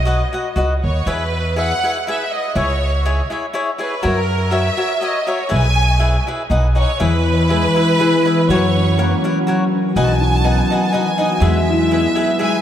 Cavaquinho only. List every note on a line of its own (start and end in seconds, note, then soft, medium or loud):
0.05 0.22 F#4 medium
0.05 0.22 B4 medium
0.05 0.22 D#5 medium
0.05 0.23 F#5 medium
0.33 0.47 F#4 soft
0.33 0.47 B4 soft
0.33 0.48 D#5 medium
0.33 0.48 F#5 medium
0.56 0.72 F#4 medium
0.56 0.73 B4 medium
0.56 0.73 D#5 medium
0.56 0.73 F#5 medium
1.07 1.22 E4 medium
1.07 1.23 G#4 medium
1.07 1.23 B4 medium
1.07 1.23 E5 medium
1.56 1.72 E4 medium
1.56 1.72 G#4 medium
1.56 1.73 B4 medium
1.56 1.73 E5 medium
1.83 1.97 E4 soft
1.83 1.97 G#4 soft
1.83 1.98 B4 soft
1.83 1.98 E5 medium
2.07 2.22 E4 medium
2.07 2.23 G#4 medium
2.07 2.23 B4 medium
2.07 2.23 E5 medium
2.55 2.71 E4 medium
2.55 2.71 G#4 medium
2.55 2.71 C#5 medium
2.55 2.72 E5 medium
3.05 3.21 E4 medium
3.05 3.21 G#4 medium
3.05 3.21 C#5 medium
3.05 3.21 E5 medium
3.30 3.44 E4 medium
3.30 3.45 G#4 medium
3.30 3.45 C#5 medium
3.30 3.45 E5 medium
3.53 3.69 E4 medium
3.53 3.70 G#4 medium
3.53 3.70 C#5 medium
3.53 3.70 E5 medium
3.78 3.93 E4 soft
3.78 3.94 G#4 medium
3.78 3.94 C#5 medium
3.78 3.94 E5 soft
4.03 4.19 F#4 medium
4.03 4.19 A#4 medium
4.03 4.19 C#5 medium
4.03 4.19 E5 medium
4.51 4.67 F#4 medium
4.51 4.68 A#4 medium
4.51 4.68 C#5 medium
4.51 4.68 E5 medium
4.77 4.92 F#4 medium
4.77 4.92 A#4 medium
4.77 4.93 C#5 medium
4.77 4.93 E5 soft
5.01 5.17 F#4 soft
5.01 5.17 A#4 medium
5.01 5.18 C#5 medium
5.01 5.18 E5 medium
5.27 5.41 F#4 soft
5.27 5.42 A#4 medium
5.27 5.42 C#5 soft
5.27 5.42 E5 medium
5.49 5.66 E4 medium
5.49 5.66 G#4 medium
5.49 5.66 B4 medium
5.49 5.66 E5 medium
5.99 6.16 E4 soft
5.99 6.16 G#4 medium
5.99 6.16 B4 medium
5.99 6.16 E5 medium
6.27 6.41 E4 soft
6.27 6.42 G#4 soft
6.27 6.42 B4 medium
6.27 6.42 E5 medium
6.50 6.66 D#4 soft
6.50 6.66 B4 medium
6.50 6.67 D#5 medium
6.50 6.67 F#5 medium
6.75 6.90 D#4 soft
6.75 6.90 B4 soft
6.75 6.91 D#5 soft
6.75 6.91 F#5 soft
7.00 7.16 E4 medium
7.00 7.16 G#4 medium
7.00 7.16 B4 medium
7.00 7.16 E5 medium
7.49 7.65 E4 soft
7.49 7.66 G#4 medium
7.49 7.66 B4 soft
7.49 7.66 E5 medium
7.75 7.89 E4 soft
7.75 7.90 G#4 soft
7.75 7.90 B4 medium
7.75 7.90 E5 medium
7.99 8.15 E4 medium
7.99 8.15 G#4 medium
7.99 8.15 B4 medium
7.99 8.16 E5 medium
8.25 8.39 E4 medium
8.25 8.40 G#4 medium
8.25 8.40 B4 medium
8.25 8.40 E5 medium
8.50 8.65 F#4 medium
8.50 8.65 A#4 medium
8.50 8.65 C#5 medium
8.50 8.65 F#5 medium
8.98 9.13 F#4 soft
8.98 9.14 A#4 medium
8.98 9.14 C#5 medium
8.98 9.14 F#5 medium
9.24 9.38 F#4 medium
9.24 9.38 A#4 medium
9.24 9.38 C#5 medium
9.24 9.38 F#5 medium
9.47 9.62 F#4 medium
9.47 9.63 A#4 medium
9.47 9.63 C#5 medium
9.47 9.64 F#5 medium
9.96 10.11 D#4 medium
9.96 10.11 B4 medium
9.96 10.12 D#5 medium
9.96 10.12 F#5 medium
10.44 10.60 D#4 medium
10.44 10.60 B4 medium
10.44 10.60 D#5 soft
10.44 10.61 F#5 medium
10.70 10.84 D#4 soft
10.70 10.85 B4 soft
10.70 10.85 D#5 medium
10.70 10.86 F#5 medium
10.92 11.08 D#4 medium
10.92 11.09 B4 soft
10.92 11.09 D#5 medium
10.92 11.09 F#5 medium
11.18 11.32 D#4 medium
11.18 11.32 B4 soft
11.18 11.33 D#5 soft
11.18 11.33 F#5 soft
11.40 11.57 E4 medium
11.40 11.58 G#4 medium
11.40 11.57 B4 medium
11.40 11.57 E5 medium
11.91 12.07 E4 soft
11.91 12.07 G#4 medium
11.91 12.07 B4 medium
11.91 12.07 E5 medium
12.15 12.30 E4 soft
12.15 12.30 G#4 medium
12.15 12.31 B4 medium
12.15 12.32 E5 medium
12.39 12.56 E4 medium
12.39 12.55 G#4 medium
12.39 12.56 B4 medium
12.39 12.56 E5 medium